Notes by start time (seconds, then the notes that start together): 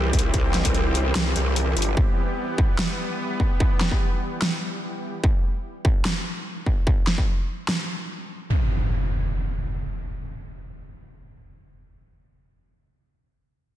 Already playing: C2 E3 G3 C4 G4
0.13 kick, closed hi-hat
0.19 closed hi-hat
0.34 C2, kick, closed hi-hat
0.54 snare, closed hi-hat
0.65 kick, closed hi-hat
0.75 closed hi-hat
0.95 closed hi-hat
1.15 C2, snare, closed hi-hat
1.36 C2, closed hi-hat
1.56 closed hi-hat
1.77 G1, closed hi-hat
1.82 closed hi-hat
1.97 B3, kick
2.58 kick
2.79 snare
3.40 kick
3.60 kick
3.81 snare
3.91 kick
4.42 snare
5.24 kick
5.85 kick
6.05 snare
6.66 kick
6.87 kick
7.07 snare
7.18 kick
7.68 snare
8.50 impact